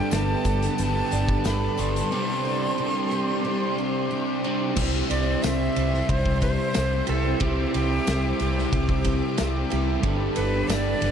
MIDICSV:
0, 0, Header, 1, 9, 480
1, 0, Start_track
1, 0, Key_signature, 0, "major"
1, 0, Tempo, 665188
1, 1523, Time_signature, 4, 2, 24, 8
1, 3919, Tempo, 657895
1, 8065, End_track
2, 0, Start_track
2, 0, Title_t, "Analog synth pad"
2, 0, Program_c, 0, 89
2, 0, Note_on_c, 0, 59, 73
2, 0, Note_on_c, 0, 67, 70
2, 0, Note_on_c, 0, 74, 71
2, 0, Note_on_c, 0, 81, 86
2, 1505, Note_off_c, 0, 59, 0
2, 1505, Note_off_c, 0, 67, 0
2, 1505, Note_off_c, 0, 81, 0
2, 1525, Note_on_c, 0, 72, 76
2, 1529, Note_on_c, 0, 67, 72
2, 1530, Note_on_c, 0, 84, 83
2, 3413, Note_off_c, 0, 74, 0
2, 3417, Note_off_c, 0, 72, 0
2, 3423, Note_off_c, 0, 84, 0
2, 3425, Note_off_c, 0, 67, 0
2, 3426, Note_on_c, 0, 72, 76
2, 3431, Note_on_c, 0, 76, 71
2, 3432, Note_on_c, 0, 84, 86
2, 3435, Note_on_c, 0, 67, 78
2, 5339, Note_off_c, 0, 84, 0
2, 5361, Note_on_c, 0, 86, 93
2, 7243, Note_off_c, 0, 72, 0
2, 7246, Note_off_c, 0, 76, 0
2, 7258, Note_on_c, 0, 83, 86
2, 7260, Note_off_c, 0, 86, 0
2, 7263, Note_on_c, 0, 74, 77
2, 7264, Note_on_c, 0, 81, 70
2, 8065, Note_off_c, 0, 67, 0
2, 8065, Note_off_c, 0, 74, 0
2, 8065, Note_off_c, 0, 81, 0
2, 8065, Note_off_c, 0, 83, 0
2, 8065, End_track
3, 0, Start_track
3, 0, Title_t, "Flute"
3, 0, Program_c, 1, 73
3, 0, Note_on_c, 1, 79, 111
3, 90, Note_on_c, 1, 81, 110
3, 101, Note_off_c, 1, 79, 0
3, 567, Note_off_c, 1, 81, 0
3, 579, Note_on_c, 1, 81, 112
3, 1055, Note_on_c, 1, 83, 92
3, 1066, Note_off_c, 1, 81, 0
3, 1292, Note_on_c, 1, 84, 92
3, 1303, Note_off_c, 1, 83, 0
3, 3207, Note_off_c, 1, 84, 0
3, 3673, Note_on_c, 1, 74, 97
3, 3914, Note_on_c, 1, 76, 107
3, 3925, Note_off_c, 1, 74, 0
3, 4403, Note_on_c, 1, 72, 114
3, 4414, Note_off_c, 1, 76, 0
3, 4633, Note_off_c, 1, 72, 0
3, 4638, Note_on_c, 1, 72, 114
3, 5131, Note_on_c, 1, 69, 91
3, 5142, Note_off_c, 1, 72, 0
3, 5365, Note_on_c, 1, 67, 90
3, 5376, Note_off_c, 1, 69, 0
3, 5596, Note_off_c, 1, 67, 0
3, 5601, Note_on_c, 1, 67, 113
3, 6053, Note_off_c, 1, 67, 0
3, 6092, Note_on_c, 1, 67, 89
3, 7016, Note_off_c, 1, 67, 0
3, 7512, Note_on_c, 1, 71, 109
3, 7748, Note_on_c, 1, 74, 113
3, 7759, Note_off_c, 1, 71, 0
3, 8065, Note_off_c, 1, 74, 0
3, 8065, End_track
4, 0, Start_track
4, 0, Title_t, "Clean electric guitar"
4, 0, Program_c, 2, 27
4, 0, Note_on_c, 2, 55, 70
4, 0, Note_on_c, 2, 59, 67
4, 0, Note_on_c, 2, 62, 73
4, 0, Note_on_c, 2, 69, 76
4, 1525, Note_off_c, 2, 59, 0
4, 1527, Note_on_c, 2, 48, 71
4, 1529, Note_off_c, 2, 62, 0
4, 1532, Note_off_c, 2, 55, 0
4, 1532, Note_off_c, 2, 69, 0
4, 1535, Note_on_c, 2, 55, 70
4, 1537, Note_on_c, 2, 60, 67
4, 1542, Note_on_c, 2, 62, 68
4, 1548, Note_on_c, 2, 67, 72
4, 3422, Note_off_c, 2, 48, 0
4, 3428, Note_off_c, 2, 55, 0
4, 3431, Note_on_c, 2, 48, 76
4, 3432, Note_off_c, 2, 60, 0
4, 3436, Note_on_c, 2, 55, 81
4, 3440, Note_on_c, 2, 60, 105
4, 3443, Note_off_c, 2, 67, 0
4, 3448, Note_off_c, 2, 62, 0
4, 3451, Note_on_c, 2, 64, 89
4, 3452, Note_on_c, 2, 67, 86
4, 5104, Note_off_c, 2, 48, 0
4, 5108, Note_off_c, 2, 60, 0
4, 5111, Note_off_c, 2, 67, 0
4, 5114, Note_off_c, 2, 64, 0
4, 5114, Note_on_c, 2, 67, 91
4, 5123, Note_on_c, 2, 64, 85
4, 5131, Note_on_c, 2, 60, 77
4, 5134, Note_off_c, 2, 55, 0
4, 5137, Note_on_c, 2, 55, 72
4, 5143, Note_on_c, 2, 48, 73
4, 5348, Note_off_c, 2, 48, 0
4, 5349, Note_off_c, 2, 64, 0
4, 5353, Note_off_c, 2, 60, 0
4, 5357, Note_on_c, 2, 48, 86
4, 5361, Note_off_c, 2, 55, 0
4, 5364, Note_on_c, 2, 55, 88
4, 5371, Note_on_c, 2, 60, 85
4, 5377, Note_on_c, 2, 64, 94
4, 5381, Note_off_c, 2, 67, 0
4, 5384, Note_on_c, 2, 67, 92
4, 7024, Note_off_c, 2, 48, 0
4, 7031, Note_off_c, 2, 60, 0
4, 7032, Note_off_c, 2, 67, 0
4, 7034, Note_off_c, 2, 64, 0
4, 7035, Note_on_c, 2, 67, 79
4, 7044, Note_on_c, 2, 64, 86
4, 7049, Note_on_c, 2, 60, 77
4, 7052, Note_off_c, 2, 55, 0
4, 7055, Note_on_c, 2, 55, 79
4, 7059, Note_on_c, 2, 48, 66
4, 7261, Note_off_c, 2, 55, 0
4, 7264, Note_on_c, 2, 55, 83
4, 7267, Note_off_c, 2, 64, 0
4, 7270, Note_off_c, 2, 60, 0
4, 7273, Note_on_c, 2, 59, 94
4, 7275, Note_off_c, 2, 48, 0
4, 7281, Note_on_c, 2, 62, 111
4, 7288, Note_off_c, 2, 67, 0
4, 7290, Note_on_c, 2, 69, 106
4, 8065, Note_off_c, 2, 55, 0
4, 8065, Note_off_c, 2, 59, 0
4, 8065, Note_off_c, 2, 62, 0
4, 8065, Note_off_c, 2, 69, 0
4, 8065, End_track
5, 0, Start_track
5, 0, Title_t, "Twelve-string acoustic guitar"
5, 0, Program_c, 3, 25
5, 0, Note_on_c, 3, 55, 67
5, 0, Note_on_c, 3, 67, 82
5, 81, Note_on_c, 3, 59, 71
5, 326, Note_off_c, 3, 67, 0
5, 329, Note_on_c, 3, 69, 74
5, 556, Note_off_c, 3, 59, 0
5, 565, Note_on_c, 3, 59, 68
5, 804, Note_on_c, 3, 62, 76
5, 1031, Note_off_c, 3, 69, 0
5, 1040, Note_on_c, 3, 69, 77
5, 1062, Note_off_c, 3, 55, 0
5, 1278, Note_off_c, 3, 62, 0
5, 1286, Note_on_c, 3, 62, 74
5, 1522, Note_off_c, 3, 69, 0
5, 1525, Note_off_c, 3, 59, 0
5, 1525, Note_off_c, 3, 62, 0
5, 1529, Note_on_c, 3, 55, 78
5, 1760, Note_off_c, 3, 55, 0
5, 1768, Note_on_c, 3, 55, 69
5, 2006, Note_on_c, 3, 60, 74
5, 2247, Note_on_c, 3, 67, 77
5, 2477, Note_off_c, 3, 60, 0
5, 2486, Note_on_c, 3, 60, 67
5, 2729, Note_on_c, 3, 62, 63
5, 2955, Note_off_c, 3, 67, 0
5, 2964, Note_on_c, 3, 67, 70
5, 2965, Note_off_c, 3, 55, 0
5, 3197, Note_off_c, 3, 62, 0
5, 3206, Note_on_c, 3, 62, 77
5, 3435, Note_off_c, 3, 60, 0
5, 3442, Note_off_c, 3, 67, 0
5, 3443, Note_off_c, 3, 62, 0
5, 3444, Note_on_c, 3, 60, 75
5, 3679, Note_on_c, 3, 67, 79
5, 3915, Note_on_c, 3, 64, 77
5, 4152, Note_off_c, 3, 60, 0
5, 4161, Note_on_c, 3, 60, 72
5, 4389, Note_off_c, 3, 60, 0
5, 4398, Note_on_c, 3, 60, 65
5, 4628, Note_off_c, 3, 60, 0
5, 4637, Note_on_c, 3, 60, 70
5, 4870, Note_off_c, 3, 60, 0
5, 4879, Note_on_c, 3, 60, 75
5, 5110, Note_off_c, 3, 64, 0
5, 5119, Note_on_c, 3, 64, 85
5, 5350, Note_off_c, 3, 60, 0
5, 5358, Note_on_c, 3, 60, 68
5, 5606, Note_off_c, 3, 67, 0
5, 5608, Note_on_c, 3, 67, 77
5, 5834, Note_off_c, 3, 64, 0
5, 5843, Note_on_c, 3, 64, 76
5, 6077, Note_off_c, 3, 60, 0
5, 6085, Note_on_c, 3, 60, 72
5, 6315, Note_off_c, 3, 60, 0
5, 6324, Note_on_c, 3, 60, 68
5, 6556, Note_off_c, 3, 60, 0
5, 6564, Note_on_c, 3, 60, 75
5, 6790, Note_off_c, 3, 60, 0
5, 6799, Note_on_c, 3, 60, 81
5, 7027, Note_off_c, 3, 64, 0
5, 7036, Note_on_c, 3, 64, 78
5, 7275, Note_on_c, 3, 55, 81
5, 7278, Note_off_c, 3, 64, 0
5, 7279, Note_off_c, 3, 60, 0
5, 7516, Note_off_c, 3, 67, 0
5, 7519, Note_on_c, 3, 69, 85
5, 7753, Note_on_c, 3, 62, 73
5, 7992, Note_on_c, 3, 59, 69
5, 8065, Note_off_c, 3, 55, 0
5, 8065, Note_off_c, 3, 59, 0
5, 8065, Note_off_c, 3, 62, 0
5, 8065, Note_off_c, 3, 69, 0
5, 8065, End_track
6, 0, Start_track
6, 0, Title_t, "Distorted electric guitar"
6, 0, Program_c, 4, 30
6, 0, Note_on_c, 4, 43, 106
6, 0, Note_on_c, 4, 50, 100
6, 0, Note_on_c, 4, 55, 107
6, 79, Note_off_c, 4, 43, 0
6, 88, Note_on_c, 4, 43, 79
6, 92, Note_off_c, 4, 50, 0
6, 101, Note_on_c, 4, 50, 70
6, 108, Note_off_c, 4, 55, 0
6, 111, Note_on_c, 4, 55, 82
6, 329, Note_off_c, 4, 55, 0
6, 332, Note_on_c, 4, 55, 74
6, 346, Note_off_c, 4, 50, 0
6, 355, Note_on_c, 4, 50, 68
6, 565, Note_off_c, 4, 43, 0
6, 576, Note_on_c, 4, 43, 79
6, 581, Note_off_c, 4, 50, 0
6, 590, Note_on_c, 4, 50, 77
6, 598, Note_off_c, 4, 55, 0
6, 601, Note_on_c, 4, 55, 89
6, 1046, Note_off_c, 4, 43, 0
6, 1055, Note_on_c, 4, 43, 77
6, 1064, Note_off_c, 4, 50, 0
6, 1072, Note_on_c, 4, 50, 83
6, 1075, Note_off_c, 4, 55, 0
6, 1078, Note_on_c, 4, 55, 86
6, 1515, Note_off_c, 4, 43, 0
6, 1524, Note_off_c, 4, 50, 0
6, 1529, Note_on_c, 4, 48, 86
6, 1539, Note_off_c, 4, 55, 0
6, 1542, Note_on_c, 4, 55, 104
6, 1550, Note_on_c, 4, 60, 106
6, 2002, Note_off_c, 4, 48, 0
6, 2011, Note_on_c, 4, 48, 71
6, 2016, Note_off_c, 4, 55, 0
6, 2019, Note_off_c, 4, 60, 0
6, 2024, Note_on_c, 4, 55, 79
6, 2028, Note_on_c, 4, 60, 80
6, 2238, Note_off_c, 4, 60, 0
6, 2247, Note_on_c, 4, 60, 76
6, 2264, Note_off_c, 4, 55, 0
6, 2272, Note_on_c, 4, 55, 58
6, 2477, Note_off_c, 4, 48, 0
6, 2486, Note_on_c, 4, 48, 94
6, 2488, Note_off_c, 4, 55, 0
6, 2497, Note_off_c, 4, 60, 0
6, 2497, Note_on_c, 4, 55, 89
6, 2505, Note_on_c, 4, 60, 89
6, 2945, Note_off_c, 4, 48, 0
6, 2954, Note_on_c, 4, 48, 77
6, 2961, Note_off_c, 4, 55, 0
6, 2969, Note_on_c, 4, 55, 84
6, 2972, Note_off_c, 4, 60, 0
6, 2981, Note_on_c, 4, 60, 79
6, 3422, Note_off_c, 4, 48, 0
6, 3430, Note_off_c, 4, 55, 0
6, 3433, Note_on_c, 4, 48, 106
6, 3436, Note_off_c, 4, 60, 0
6, 3450, Note_on_c, 4, 55, 99
6, 3461, Note_on_c, 4, 60, 102
6, 3911, Note_off_c, 4, 48, 0
6, 3914, Note_on_c, 4, 48, 73
6, 3925, Note_off_c, 4, 55, 0
6, 3928, Note_on_c, 4, 55, 75
6, 3933, Note_off_c, 4, 60, 0
6, 3936, Note_on_c, 4, 60, 74
6, 4157, Note_off_c, 4, 60, 0
6, 4160, Note_on_c, 4, 60, 75
6, 4181, Note_off_c, 4, 55, 0
6, 4184, Note_on_c, 4, 55, 65
6, 4386, Note_off_c, 4, 48, 0
6, 4389, Note_on_c, 4, 48, 79
6, 4400, Note_off_c, 4, 55, 0
6, 4403, Note_on_c, 4, 55, 86
6, 4408, Note_off_c, 4, 60, 0
6, 4417, Note_on_c, 4, 60, 85
6, 4867, Note_off_c, 4, 48, 0
6, 4876, Note_on_c, 4, 48, 90
6, 4888, Note_off_c, 4, 55, 0
6, 4891, Note_off_c, 4, 60, 0
6, 4891, Note_on_c, 4, 55, 76
6, 4900, Note_on_c, 4, 60, 85
6, 5349, Note_off_c, 4, 48, 0
6, 5357, Note_on_c, 4, 48, 110
6, 5371, Note_off_c, 4, 55, 0
6, 5371, Note_off_c, 4, 60, 0
6, 5374, Note_on_c, 4, 55, 100
6, 5380, Note_on_c, 4, 60, 114
6, 5827, Note_off_c, 4, 48, 0
6, 5836, Note_on_c, 4, 48, 78
6, 5845, Note_off_c, 4, 55, 0
6, 5847, Note_on_c, 4, 55, 79
6, 5851, Note_off_c, 4, 60, 0
6, 5860, Note_on_c, 4, 60, 91
6, 6082, Note_off_c, 4, 60, 0
6, 6091, Note_on_c, 4, 60, 83
6, 6106, Note_off_c, 4, 55, 0
6, 6109, Note_on_c, 4, 55, 64
6, 6319, Note_off_c, 4, 48, 0
6, 6330, Note_on_c, 4, 48, 87
6, 6340, Note_off_c, 4, 60, 0
6, 6342, Note_off_c, 4, 55, 0
6, 6345, Note_on_c, 4, 55, 95
6, 6349, Note_on_c, 4, 60, 101
6, 6789, Note_off_c, 4, 48, 0
6, 6798, Note_on_c, 4, 48, 77
6, 6806, Note_off_c, 4, 55, 0
6, 6809, Note_on_c, 4, 55, 87
6, 6814, Note_off_c, 4, 60, 0
6, 6823, Note_on_c, 4, 60, 86
6, 7264, Note_off_c, 4, 48, 0
6, 7277, Note_off_c, 4, 60, 0
6, 7278, Note_on_c, 4, 43, 104
6, 7290, Note_on_c, 4, 50, 123
6, 7295, Note_off_c, 4, 55, 0
6, 7298, Note_on_c, 4, 55, 107
6, 7758, Note_off_c, 4, 43, 0
6, 7761, Note_on_c, 4, 43, 72
6, 7764, Note_off_c, 4, 50, 0
6, 7772, Note_on_c, 4, 50, 82
6, 7782, Note_off_c, 4, 55, 0
6, 7785, Note_on_c, 4, 55, 76
6, 7992, Note_off_c, 4, 55, 0
6, 7995, Note_on_c, 4, 55, 75
6, 8013, Note_off_c, 4, 50, 0
6, 8021, Note_on_c, 4, 50, 72
6, 8065, Note_off_c, 4, 43, 0
6, 8065, Note_off_c, 4, 50, 0
6, 8065, Note_off_c, 4, 55, 0
6, 8065, End_track
7, 0, Start_track
7, 0, Title_t, "Overdriven electric guitar"
7, 0, Program_c, 5, 29
7, 1283, Note_on_c, 5, 55, 83
7, 1300, Note_on_c, 5, 50, 77
7, 1310, Note_on_c, 5, 43, 71
7, 1517, Note_off_c, 5, 50, 0
7, 1523, Note_off_c, 5, 43, 0
7, 1530, Note_off_c, 5, 55, 0
7, 3209, Note_on_c, 5, 60, 94
7, 3222, Note_on_c, 5, 55, 78
7, 3230, Note_on_c, 5, 48, 72
7, 3430, Note_off_c, 5, 60, 0
7, 3436, Note_off_c, 5, 48, 0
7, 3437, Note_off_c, 5, 55, 0
7, 8065, End_track
8, 0, Start_track
8, 0, Title_t, "Fingered electric bass"
8, 0, Program_c, 6, 33
8, 88, Note_on_c, 6, 31, 91
8, 245, Note_off_c, 6, 31, 0
8, 328, Note_on_c, 6, 31, 89
8, 485, Note_off_c, 6, 31, 0
8, 574, Note_on_c, 6, 31, 100
8, 729, Note_off_c, 6, 31, 0
8, 813, Note_on_c, 6, 31, 92
8, 969, Note_off_c, 6, 31, 0
8, 1048, Note_on_c, 6, 31, 85
8, 1205, Note_off_c, 6, 31, 0
8, 1291, Note_on_c, 6, 31, 83
8, 1447, Note_off_c, 6, 31, 0
8, 3440, Note_on_c, 6, 36, 109
8, 3613, Note_off_c, 6, 36, 0
8, 3684, Note_on_c, 6, 36, 90
8, 3855, Note_off_c, 6, 36, 0
8, 3926, Note_on_c, 6, 36, 93
8, 4098, Note_off_c, 6, 36, 0
8, 4163, Note_on_c, 6, 36, 87
8, 4336, Note_off_c, 6, 36, 0
8, 4401, Note_on_c, 6, 36, 104
8, 4750, Note_off_c, 6, 36, 0
8, 4894, Note_on_c, 6, 36, 87
8, 5064, Note_off_c, 6, 36, 0
8, 5128, Note_on_c, 6, 36, 95
8, 5300, Note_off_c, 6, 36, 0
8, 5362, Note_on_c, 6, 36, 114
8, 5536, Note_off_c, 6, 36, 0
8, 5609, Note_on_c, 6, 36, 89
8, 5781, Note_off_c, 6, 36, 0
8, 5849, Note_on_c, 6, 36, 93
8, 6020, Note_off_c, 6, 36, 0
8, 6088, Note_on_c, 6, 36, 87
8, 6260, Note_off_c, 6, 36, 0
8, 6324, Note_on_c, 6, 36, 101
8, 6670, Note_off_c, 6, 36, 0
8, 6813, Note_on_c, 6, 36, 87
8, 6982, Note_off_c, 6, 36, 0
8, 7052, Note_on_c, 6, 36, 93
8, 7221, Note_off_c, 6, 36, 0
8, 7278, Note_on_c, 6, 31, 114
8, 7452, Note_off_c, 6, 31, 0
8, 7528, Note_on_c, 6, 31, 91
8, 7698, Note_off_c, 6, 31, 0
8, 7756, Note_on_c, 6, 31, 100
8, 7930, Note_off_c, 6, 31, 0
8, 7995, Note_on_c, 6, 31, 99
8, 8065, Note_off_c, 6, 31, 0
8, 8065, End_track
9, 0, Start_track
9, 0, Title_t, "Drums"
9, 81, Note_on_c, 9, 54, 96
9, 88, Note_on_c, 9, 42, 68
9, 94, Note_on_c, 9, 38, 108
9, 153, Note_off_c, 9, 54, 0
9, 160, Note_off_c, 9, 42, 0
9, 166, Note_off_c, 9, 38, 0
9, 322, Note_on_c, 9, 54, 71
9, 325, Note_on_c, 9, 36, 77
9, 326, Note_on_c, 9, 42, 62
9, 394, Note_off_c, 9, 54, 0
9, 397, Note_off_c, 9, 36, 0
9, 398, Note_off_c, 9, 42, 0
9, 450, Note_on_c, 9, 42, 78
9, 456, Note_on_c, 9, 38, 33
9, 523, Note_off_c, 9, 42, 0
9, 528, Note_off_c, 9, 38, 0
9, 562, Note_on_c, 9, 54, 74
9, 566, Note_on_c, 9, 42, 66
9, 635, Note_off_c, 9, 54, 0
9, 638, Note_off_c, 9, 42, 0
9, 807, Note_on_c, 9, 42, 67
9, 880, Note_off_c, 9, 42, 0
9, 928, Note_on_c, 9, 36, 93
9, 1000, Note_off_c, 9, 36, 0
9, 1045, Note_on_c, 9, 42, 73
9, 1045, Note_on_c, 9, 54, 98
9, 1051, Note_on_c, 9, 38, 117
9, 1117, Note_off_c, 9, 42, 0
9, 1117, Note_off_c, 9, 54, 0
9, 1123, Note_off_c, 9, 38, 0
9, 1281, Note_on_c, 9, 54, 69
9, 1292, Note_on_c, 9, 42, 64
9, 1353, Note_off_c, 9, 54, 0
9, 1364, Note_off_c, 9, 42, 0
9, 1415, Note_on_c, 9, 42, 71
9, 1487, Note_off_c, 9, 42, 0
9, 3438, Note_on_c, 9, 49, 122
9, 3442, Note_on_c, 9, 36, 108
9, 3510, Note_off_c, 9, 49, 0
9, 3514, Note_off_c, 9, 36, 0
9, 3685, Note_on_c, 9, 51, 85
9, 3757, Note_off_c, 9, 51, 0
9, 3922, Note_on_c, 9, 51, 100
9, 3922, Note_on_c, 9, 54, 102
9, 3928, Note_on_c, 9, 38, 108
9, 3995, Note_off_c, 9, 51, 0
9, 3995, Note_off_c, 9, 54, 0
9, 4001, Note_off_c, 9, 38, 0
9, 4161, Note_on_c, 9, 51, 76
9, 4234, Note_off_c, 9, 51, 0
9, 4290, Note_on_c, 9, 38, 38
9, 4363, Note_off_c, 9, 38, 0
9, 4401, Note_on_c, 9, 36, 115
9, 4405, Note_on_c, 9, 51, 91
9, 4474, Note_off_c, 9, 36, 0
9, 4478, Note_off_c, 9, 51, 0
9, 4521, Note_on_c, 9, 36, 92
9, 4594, Note_off_c, 9, 36, 0
9, 4640, Note_on_c, 9, 36, 79
9, 4642, Note_on_c, 9, 51, 76
9, 4713, Note_off_c, 9, 36, 0
9, 4715, Note_off_c, 9, 51, 0
9, 4876, Note_on_c, 9, 51, 110
9, 4881, Note_on_c, 9, 38, 122
9, 4882, Note_on_c, 9, 54, 109
9, 4948, Note_off_c, 9, 51, 0
9, 4954, Note_off_c, 9, 38, 0
9, 4955, Note_off_c, 9, 54, 0
9, 5113, Note_on_c, 9, 51, 79
9, 5186, Note_off_c, 9, 51, 0
9, 5355, Note_on_c, 9, 51, 100
9, 5362, Note_on_c, 9, 36, 116
9, 5428, Note_off_c, 9, 51, 0
9, 5435, Note_off_c, 9, 36, 0
9, 5605, Note_on_c, 9, 51, 77
9, 5678, Note_off_c, 9, 51, 0
9, 5845, Note_on_c, 9, 54, 118
9, 5846, Note_on_c, 9, 51, 104
9, 5852, Note_on_c, 9, 38, 119
9, 5918, Note_off_c, 9, 54, 0
9, 5919, Note_off_c, 9, 51, 0
9, 5925, Note_off_c, 9, 38, 0
9, 6082, Note_on_c, 9, 51, 68
9, 6155, Note_off_c, 9, 51, 0
9, 6219, Note_on_c, 9, 38, 38
9, 6292, Note_off_c, 9, 38, 0
9, 6324, Note_on_c, 9, 36, 104
9, 6324, Note_on_c, 9, 51, 93
9, 6397, Note_off_c, 9, 36, 0
9, 6397, Note_off_c, 9, 51, 0
9, 6441, Note_on_c, 9, 36, 92
9, 6514, Note_off_c, 9, 36, 0
9, 6555, Note_on_c, 9, 51, 93
9, 6560, Note_on_c, 9, 36, 82
9, 6628, Note_off_c, 9, 51, 0
9, 6633, Note_off_c, 9, 36, 0
9, 6797, Note_on_c, 9, 51, 109
9, 6803, Note_on_c, 9, 38, 127
9, 6803, Note_on_c, 9, 54, 98
9, 6870, Note_off_c, 9, 51, 0
9, 6875, Note_off_c, 9, 54, 0
9, 6876, Note_off_c, 9, 38, 0
9, 7044, Note_on_c, 9, 51, 81
9, 7117, Note_off_c, 9, 51, 0
9, 7278, Note_on_c, 9, 36, 122
9, 7278, Note_on_c, 9, 51, 101
9, 7351, Note_off_c, 9, 36, 0
9, 7351, Note_off_c, 9, 51, 0
9, 7513, Note_on_c, 9, 51, 85
9, 7586, Note_off_c, 9, 51, 0
9, 7759, Note_on_c, 9, 51, 115
9, 7760, Note_on_c, 9, 54, 108
9, 7765, Note_on_c, 9, 38, 109
9, 7832, Note_off_c, 9, 51, 0
9, 7833, Note_off_c, 9, 54, 0
9, 7838, Note_off_c, 9, 38, 0
9, 7995, Note_on_c, 9, 51, 76
9, 8065, Note_off_c, 9, 51, 0
9, 8065, End_track
0, 0, End_of_file